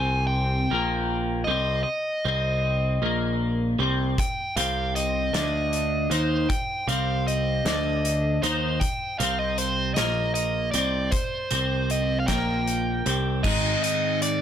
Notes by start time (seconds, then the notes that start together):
Already playing: C2 C3 C4 G#5
0.27 G5
0.70 A#1 A#2 A#3
1.44 C2 C3 C4 D#5
1.83 D#5
2.25 C2 C3 C4
3.02 A#1 A#2 A#3
3.79 C2 C3 C4
4.18 G5, kick, closed hi-hat
4.56 C2 C3 C4 F5, closed hi-hat
4.95 D#5, closed hi-hat
5.33 D2 D3 D4, snare, closed hi-hat
5.73 closed hi-hat
6.10 D#2 D#3 D#4 C5, closed hi-hat
6.49 G5, kick, closed hi-hat
6.87 C2 C3 C4 F5, closed hi-hat
7.27 D#5, closed hi-hat
7.65 D2 D3 D4, snare, closed hi-hat
8.05 closed hi-hat
8.42 D#2 D#3 D#4 C5, closed hi-hat
8.80 G5, kick, closed hi-hat
9.19 C2 C3 C4 F5, closed hi-hat
9.39 D#5
9.58 C5, closed hi-hat
9.94 A#1 A#2 A#3 D#5, snare, closed hi-hat
10.34 D#5, closed hi-hat
10.72 C2 C3 C4 D5, closed hi-hat
11.11 C5, kick, closed hi-hat
11.51 C2 C3 C4, closed hi-hat
11.90 D#5, closed hi-hat
12.20 F5
12.27 A#1 A#2 A#3 G5, kick, snare, closed hi-hat
12.68 closed hi-hat
13.06 C2 C3 C4, closed hi-hat
13.43 G#1 G#2 D#3 G#3 C4 D#5, kick, crash
13.48 D#4
13.83 D#5, closed hi-hat
14.22 D5, closed hi-hat